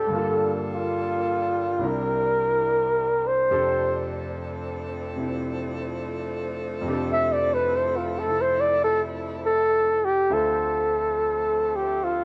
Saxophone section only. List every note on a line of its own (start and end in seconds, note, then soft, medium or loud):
0.00 1.76 D4 medium
0.11 3.31 G3 medium
0.11 1.79 A#3 medium
0.11 1.78 F4 medium
0.11 1.79 A4 medium
1.81 10.12 C4 medium
1.81 6.83 D4 medium
1.81 3.31 E4 medium
1.81 3.31 A#4 medium
3.48 10.12 F3 medium
3.48 10.12 A3 medium
3.48 10.12 A4 medium
6.87 10.12 E4 medium
10.29 12.24 F3 medium
10.29 12.24 A3 medium
10.29 12.24 C4 medium
10.29 12.24 D4 medium
10.29 12.24 A4 medium